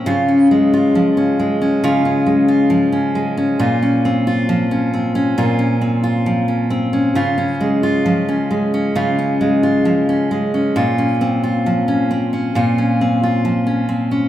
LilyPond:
\new Staff \with { instrumentName = "Steel-string acoustic guitar" } { \time 4/4 \key des \major \tempo 4 = 67 <des f'>16 des'16 aes16 f'16 f16 des'16 aes16 des'16 <des f'>16 des'16 aes16 f'16 f16 des'16 aes16 des'16 | <bes, f'>16 des'16 c'16 f'16 f16 des'16 c'16 des'16 <bes, f'>16 des'16 c'16 f'16 f16 des'16 c'16 des'16 | <des f'>16 des'16 aes16 f'16 f16 des'16 aes16 des'16 <des f'>16 des'16 aes16 f'16 f16 des'16 aes16 des'16 | <bes, f'>16 des'16 c'16 f'16 f16 des'16 c'16 des'16 <bes, f'>16 des'16 c'16 f'16 f16 des'16 c'16 des'16 | }